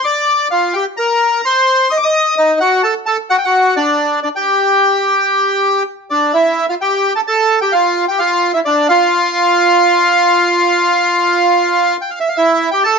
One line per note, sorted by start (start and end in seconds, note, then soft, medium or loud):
0.04 0.48 D5 medium
0.04 0.48 D6 medium
0.51 0.73 F4 medium
0.51 0.75 F5 medium
0.73 0.86 G4 medium
0.73 0.84 G5 medium
0.97 1.41 A#4 medium
0.97 1.45 A#5 medium
1.45 1.88 C5 medium
1.45 1.92 C6 medium
1.90 1.98 D#5 medium
1.90 1.98 D#6 medium
1.97 2.04 D6 medium
2.03 2.35 D#5 medium
2.03 2.37 D#6 medium
2.37 2.60 D#4 medium
2.37 2.59 D#5 medium
2.60 2.82 F#4 medium
2.60 2.82 F#5 medium
2.83 2.94 A4 medium
2.83 2.94 A5 medium
3.06 3.18 A4 medium
3.06 3.17 A5 medium
3.30 3.37 F#4 medium
3.30 3.36 F#5 medium
3.38 3.44 G5 medium
3.45 3.75 F#4 medium
3.45 3.74 F#5 medium
3.76 4.20 D4 medium
3.76 4.19 D5 medium
4.23 4.29 D4 medium
4.23 4.28 D5 medium
4.36 5.83 G4 medium
4.36 5.83 G5 medium
6.10 6.32 D4 medium
6.10 6.34 D5 medium
6.33 6.66 E4 medium
6.33 6.66 E5 medium
6.69 6.75 F4 medium
6.69 6.74 F5 medium
6.81 7.13 G4 medium
6.81 7.13 G5 medium
7.16 7.21 A4 medium
7.16 7.21 A5 medium
7.27 7.60 A4 medium
7.27 7.59 A5 medium
7.61 7.73 G4 medium
7.61 7.73 G5 medium
7.72 8.06 F4 medium
7.72 8.05 F5 medium
8.08 8.19 G4 medium
8.08 8.19 G5 medium
8.19 8.52 F4 medium
8.19 8.51 F5 medium
8.54 8.60 E4 medium
8.54 8.59 E5 medium
8.65 8.88 D4 medium
8.65 8.87 D5 medium
8.89 11.97 F4 medium
8.89 11.96 F5 loud
12.01 12.10 G5 medium
12.10 12.19 F5 medium
12.20 12.28 E5 medium
12.29 12.37 F5 medium
12.37 12.70 E4 medium
12.37 12.69 E5 medium
12.71 12.83 G4 medium
12.71 12.82 G5 medium
12.84 12.99 A4 medium
12.84 12.99 A5 medium